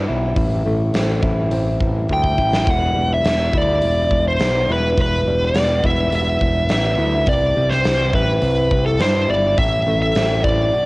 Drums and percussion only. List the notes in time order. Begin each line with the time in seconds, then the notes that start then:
0.36 kick, open hi-hat
0.94 snare, open hi-hat
1.23 kick
1.51 open hi-hat
1.80 kick
2.09 kick
2.24 kick
2.38 kick
2.53 snare
2.67 kick, open hi-hat
3.24 snare, open hi-hat
3.53 kick
3.82 open hi-hat
4.11 kick
4.40 snare, open hi-hat
4.97 kick, open hi-hat
5.55 snare, open hi-hat
5.84 kick
6.12 open hi-hat
6.41 kick
6.69 snare, open hi-hat
7.26 kick, open hi-hat
7.71 snare
7.84 snare, open hi-hat
8.13 kick
8.42 open hi-hat
8.71 kick
8.99 snare, open hi-hat
9.58 kick, open hi-hat
10.15 snare, open hi-hat
10.44 kick